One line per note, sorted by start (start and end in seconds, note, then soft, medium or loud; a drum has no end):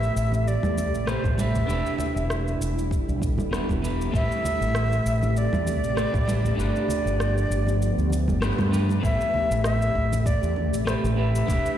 0.00 1.67 C3 medium
0.00 1.03 A3 medium
0.00 1.67 A3 medium
0.00 1.04 C4 medium
0.00 1.04 E4 medium
0.00 1.05 G4 medium
0.00 1.65 G4 medium
0.00 1.06 B4 loud
0.00 0.49 E5 loud
0.00 shaker soft
0.16 0.56 A1 medium
0.16 shaker medium
0.32 high conga medium
0.32 shaker soft
0.48 1.10 D5 medium
0.48 shaker soft
0.63 0.94 E2 medium
0.63 low conga medium
0.63 shaker soft
0.77 high conga medium
0.77 shaker medium
0.94 1.15 A1 medium
0.94 shaker soft
1.06 1.34 A3 medium
1.06 1.34 C4 medium
1.06 1.35 E4 medium
1.06 1.35 G4 medium
1.06 1.36 B4 medium
1.06 1.41 C5 medium
1.06 cross-stick medium
1.06 shaker soft
1.24 1.63 A1 medium
1.24 kick loud
1.24 high conga medium
1.24 shaker soft
1.37 1.65 A3 medium
1.37 1.66 C4 medium
1.37 1.66 E4 medium
1.37 1.66 G4 medium
1.37 1.66 B4 medium
1.37 2.62 E5 loud
1.37 low conga medium
1.37 shaker medium
1.55 low conga medium
1.55 shaker soft
1.66 1.81 E1 medium
1.66 4.12 D3 medium
1.66 4.11 G3 medium
1.66 1.70 B3 medium
1.66 3.48 D4 medium
1.66 3.49 E4 medium
1.66 4.11 E4 medium
1.66 3.50 G4 medium
1.66 shaker soft
1.71 3.50 B4 loud
1.86 shaker soft
1.98 low conga medium
1.98 shaker medium
2.16 2.55 E1 medium
2.16 shaker soft
2.30 cross-stick medium
2.30 shaker soft
2.48 shaker soft
2.61 3.01 E1 medium
2.61 shaker medium
2.79 shaker soft
2.91 kick medium
2.91 shaker soft
3.08 3.39 B1 medium
3.08 shaker soft
3.22 kick medium
3.22 shaker medium
3.38 3.60 E1 medium
3.38 low conga medium
3.38 shaker soft
3.51 3.79 B3 medium
3.51 3.79 D4 medium
3.51 3.80 E4 medium
3.51 3.80 G4 medium
3.51 3.80 B4 medium
3.51 cross-stick medium
3.51 shaker soft
3.69 4.08 E1 medium
3.69 kick medium
3.69 low conga medium
3.69 shaker soft
3.82 4.10 B3 medium
3.82 4.10 D4 medium
3.82 4.11 E4 medium
3.82 4.11 G4 medium
3.82 4.11 B4 medium
3.82 high conga medium
3.82 shaker medium
4.01 shaker soft
4.11 4.26 A1 medium
4.11 6.56 C3 medium
4.11 5.93 A3 loud
4.11 6.56 A3 medium
4.11 5.93 C4 medium
4.11 5.94 E4 medium
4.11 9.00 G4 medium
4.11 5.95 G4 medium
4.11 5.39 E5 loud
4.11 kick loud
4.15 5.95 B4 loud
4.15 shaker soft
4.32 shaker soft
4.44 low conga medium
4.44 shaker medium
4.61 5.00 A1 medium
4.61 shaker soft
4.75 cross-stick loud
4.75 shaker soft
4.92 shaker soft
5.06 5.46 A1 medium
5.06 shaker medium
5.22 high conga medium
5.22 shaker soft
5.37 6.60 D5 loud
5.37 shaker soft
5.53 5.83 E2 medium
5.53 low conga medium
5.53 shaker soft
5.66 high conga medium
5.66 shaker medium
5.83 6.05 A1 medium
5.83 shaker soft
5.96 6.24 A3 medium
5.96 6.24 C4 medium
5.96 6.25 E4 medium
5.96 6.25 G4 medium
5.96 6.25 B4 medium
5.96 cross-stick medium
5.96 shaker soft
6.14 6.53 A1 medium
6.14 kick loud
6.14 high conga medium
6.14 shaker soft
6.26 6.54 A3 medium
6.26 6.55 C4 medium
6.26 6.55 E4 medium
6.26 6.55 G4 medium
6.26 6.56 B4 medium
6.26 low conga medium
6.26 shaker medium
6.44 low conga medium
6.44 shaker soft
6.55 6.71 G1 medium
6.55 9.01 F3 medium
6.55 8.37 A3 medium
6.55 9.01 B3 medium
6.55 8.38 D4 medium
6.55 8.39 F4 medium
6.55 8.39 G4 medium
6.60 8.40 B4 loud
6.60 8.39 D5 loud
6.60 shaker soft
6.76 shaker soft
6.89 low conga medium
6.89 shaker medium
7.05 7.44 G1 medium
7.05 shaker soft
7.20 cross-stick medium
7.20 shaker soft
7.38 shaker soft
7.50 7.91 G1 medium
7.50 shaker medium
7.67 high conga medium
7.67 shaker soft
7.82 shaker soft
7.98 8.30 D2 medium
7.98 shaker soft
8.10 high conga medium
8.10 shaker medium
8.28 8.50 G1 medium
8.28 low conga medium
8.28 shaker soft
8.41 8.69 A3 medium
8.41 8.69 D4 medium
8.41 8.69 F4 medium
8.41 8.70 G4 medium
8.41 8.70 B4 medium
8.41 cross-stick loud
8.41 shaker soft
8.58 8.98 G2 medium
8.58 low conga medium
8.58 shaker soft
8.71 8.99 A3 medium
8.71 9.00 D4 medium
8.71 9.00 F4 medium
8.71 9.00 G4 medium
8.71 9.01 B4 medium
8.71 high conga medium
8.71 shaker medium
8.89 low conga medium
8.89 shaker soft
9.00 9.16 A1 medium
9.00 11.46 C3 medium
9.00 10.82 A3 medium
9.00 10.83 C4 medium
9.00 10.83 E4 medium
9.00 10.84 G4 medium
9.00 9.61 E5 loud
9.00 kick loud
9.04 11.46 A3 medium
9.04 11.46 G4 medium
9.04 10.85 B4 loud
9.04 shaker medium
9.21 shaker soft
9.34 low conga medium
9.51 9.89 A1 medium
9.51 shaker medium
9.64 10.28 E5 loud
9.64 cross-stick loud
9.64 shaker soft
9.82 shaker soft
9.95 10.35 A1 medium
9.95 kick medium
10.12 high conga medium
10.12 shaker medium
10.26 10.87 D5 medium
10.26 kick loud
10.26 shaker medium
10.43 10.73 E2 medium
10.43 shaker soft
10.56 high conga medium
10.73 10.95 A1 medium
10.73 shaker medium
10.85 11.14 A3 medium
10.85 11.14 C4 medium
10.85 11.14 E4 medium
10.85 11.14 G4 medium
10.85 11.15 B4 medium
10.85 10.94 C5 medium
10.85 cross-stick loud
10.85 shaker medium
11.04 11.42 A1 medium
11.04 high conga medium
11.04 shaker soft
11.16 11.44 A3 medium
11.16 11.45 C4 medium
11.16 11.45 E4 medium
11.16 11.45 G4 medium
11.16 11.45 B4 medium
11.16 11.78 E5 loud
11.36 shaker medium
11.46 11.61 E1 medium
11.46 11.78 D3 medium
11.46 11.78 G3 medium
11.46 11.50 B3 loud
11.46 11.78 D4 medium
11.46 11.78 E4 medium
11.46 11.78 G4 medium
11.46 kick loud
11.46 shaker medium
11.51 11.78 B4 loud
11.66 shaker soft